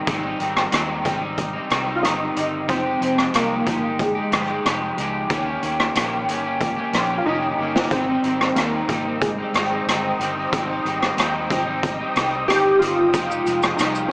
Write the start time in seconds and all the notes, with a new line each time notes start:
0.07 G#1 G#2 D#3 G3 C4 D#4, kick, closed hi-hat
0.23 G3 C4 D#4
0.39 G#1 D#3 G3 C4 D#4, closed hi-hat
0.57 cross-stick
0.72 D#2 G#2 D#3 G3 C4 D#4, cross-stick, closed hi-hat
1.04 G#1 D#3 G3 C4 D#4, kick, closed hi-hat
1.21 G3 C4 D#4
1.38 kick, closed hi-hat
1.53 G3 C4 D#4
1.70 C2 D#3 G3 C4 D#4, cross-stick, closed hi-hat
1.86 G3 C4 D#4
1.95 F4
2.03 G1 D#3 G3 C4 D#4, cross-stick, closed hi-hat
2.35 G1 D#3 G3 C4 D#4, closed hi-hat
2.68 F1 F3 G#3 C4 D#4 G4, kick, closed hi-hat
2.84 G#3 D#4 G4
3.00 F1 F3 G#3 D#4 G4, closed hi-hat
3.18 cross-stick
3.34 C2 F3 G#3 A#3 D#4 G4, cross-stick, closed hi-hat
3.66 G1 F3 G#3 D#4 G4, kick, closed hi-hat
3.82 G#3 D#4 G4
3.99 G#3, kick, closed hi-hat
4.15 G#3 D#4 G4
4.31 G1 F3 G#3 D#4 G4, cross-stick, closed hi-hat
4.47 G#3 D#4 G4
4.65 F1 F3 G#3 D#4 G4, cross-stick, closed hi-hat
4.98 C#2 F3 G#3 D#4 G4, closed hi-hat
5.30 D#2 D#3 A#3 C#4 G4, kick, closed hi-hat
5.46 A#3 C#4 G4
5.62 D#2 D#3 A#3 C#4 G4, closed hi-hat
5.80 cross-stick
5.95 A#1 D#3 A#3 C#4 G4, cross-stick, closed hi-hat
6.28 G1 D#3 A#3 C#4 G4, closed hi-hat
6.44 A#3 C#4 G4
6.61 kick, closed hi-hat
6.76 A#3 C#4 G4
6.93 A#1 D#3 A#3 C#4 G4, cross-stick, closed hi-hat
7.10 A#3 C#4 G4
7.18 F4
7.26 F1 D#3 A#3 C#4 D#4 G4
7.59 G1 D#3 A#3 C#4 G4
7.76 snare
7.91 G#1 G#2 D#3 G3 C4 D#4 C5 D#5 G5 D#6, kick, closed hi-hat
8.07 G3 C4 D#4
8.24 G#1 D#3 G3 C4 D#4, closed hi-hat
8.41 cross-stick
8.56 D#2 G#2 D#3 G3 A#3 C4 D#4, cross-stick, closed hi-hat
8.89 G#1 D#3 G3 C4 D#4, kick, closed hi-hat
9.05 G3 C4 D#4
9.21 G#3, kick, closed hi-hat
9.38 G3 C4 D#4
9.54 G#1 D#3 G3 C4 D#4, cross-stick, closed hi-hat
9.71 G3 C4 D#4
9.87 G1 D#3 C4 D#4, cross-stick, closed hi-hat
10.19 G1 D#3 G3 C4 D#4, closed hi-hat
10.36 G3 C4 D#4
10.52 G#1 G#2 D#3 G3 C4 D#4, kick, closed hi-hat
10.69 G3 C4 D#4
10.84 G#1 D#3 G3 C4 D#4, closed hi-hat
11.03 cross-stick
11.17 D#2 G#2 D#3 G3 C4 D#4, cross-stick, closed hi-hat
11.50 G#1 D#3 G3 C4 D#4, kick, closed hi-hat
11.66 G3 C4 D#4
11.83 kick, closed hi-hat
11.99 G3 C4 D#4
12.15 C2 D#3 G3 C4 D#4, cross-stick, closed hi-hat
12.32 G3 C4 D#4
12.48 G1 D#3 G3 C4 D#4 G4, cross-stick, closed hi-hat
12.79 G1 D#3 G3 C4 F4, closed hi-hat
12.84 D#4
13.13 F1 F3 G#3 D#4 G4 F5, kick, closed hi-hat, shaker
13.29 G#3 D#4 G4, shaker
13.46 F1 F3 G#3 D#4 G4, closed hi-hat, shaker
13.63 cross-stick, shaker
13.76 C2 F3 G#3 D#4, closed hi-hat, shaker
13.80 D#4 G4, cross-stick
13.95 shaker
14.08 C#4